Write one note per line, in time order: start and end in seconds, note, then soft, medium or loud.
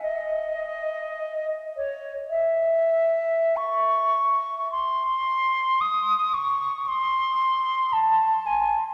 0.02 1.46 D#5 medium
1.76 2.12 C#5 soft
2.30 3.58 E5 medium
3.56 4.70 C#6 medium
4.72 5.82 C6 medium
5.81 6.35 D#6 medium
6.34 6.89 C#6 medium
6.88 7.94 C6 medium
7.92 8.48 A5 medium
8.46 8.75 G#5 medium